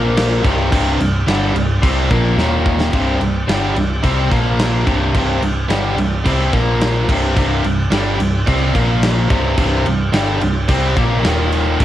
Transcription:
Already playing: A#1 A#2 F3 A#3 F4 C5
0.17 snare, crash
0.44 C1 C2 G2 C3 C4 G4 D5, kick, crash
0.72 C1 C2 G2 C3, kick, crash
0.99 C1 C2 G2, crash
1.27 G1 G2 D3 G3, snare, crash
1.54 C1 C2 G2, crash
1.82 C2 C3 G3 C4, kick, crash
2.10 A#1 A#2 F3 A#3, kick, crash
2.37 D#1 D#2 A#2 D#3 D#4 A#4 F5, snare
2.66 kick
2.80 snare
2.92 C1 C2 G2 C3 C4 G4 D5, kick, crash
3.20 C1 C2 G2, crash
3.47 G1 G2 D3 G3, snare, crash
3.75 C1 C2 G2, crash
4.03 C2 C3 G3 C4, kick, crash
4.30 A#1 A#2 F3 A#3 F4 C5, kick, crash
4.59 snare, crash
4.86 C1 C2 G2 C3 C4 G4 D5, kick, crash
5.14 C1 C2 G2 C3, kick, crash
5.42 C1 C2 G2, crash
5.69 G1 G2 D3 G3, snare, crash
5.97 C1 C2 G2, crash
6.25 C2 C3 G3 C4, kick, crash
6.53 A#1 A#2 F3 A#3 F4 C5, kick, crash
6.81 snare, crash
7.09 C1 C2 G2 C3 C4 G4 D5, kick, crash
7.36 C1 C2 G2 C3, kick, crash
7.64 C1 C2 G2, crash
7.91 G1 G2 D3 G3, snare, crash
8.19 C1 C2 G2, crash
8.47 C2 C3 G3 C4, kick, crash
8.74 A#1 A#2 F3 A#3 F4 C5, kick, crash
9.03 snare, crash
9.29 C1 C2 G2 C3 C4 G4 D5, kick, crash
9.57 C1 C2 G2 C3, kick, crash
9.86 C1 C2 G2, crash
10.13 G1 G2 D3 G3, snare, crash
10.41 C1 C2 G2, crash
10.68 C2 C3 G3 C4, kick, crash
10.96 A#1 A#2 F3 A#3, kick, crash
11.24 D#1 D#2 A#2 D#3 D#4 A#4 F5, snare, crash
11.52 crash
11.80 C1 C2 G2 C3 C4 G4 D5, kick, crash

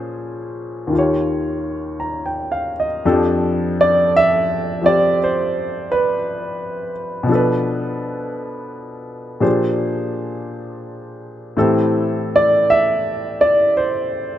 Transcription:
Already playing: A#2 F3 C#4 G#4 C5
0.87 D#2 D#3
0.93 F4 G4
0.99 C#5
2.00 A#5
2.26 G5
2.52 F5
2.80 D#5
3.05 F2 F3 D4 G4 A4
3.81 D5
4.16 E5
4.82 F3 C4 F4 G4
4.86 D5
5.24 C5
5.92 B4
7.23 B2 F3
7.29 D4 A4
7.35 B4
9.40 A#2 F3 D4 G4 G#4 C5
11.57 A2 E3 C4 G4 A4
12.36 D5
12.70 E5
13.41 D5
13.77 C5

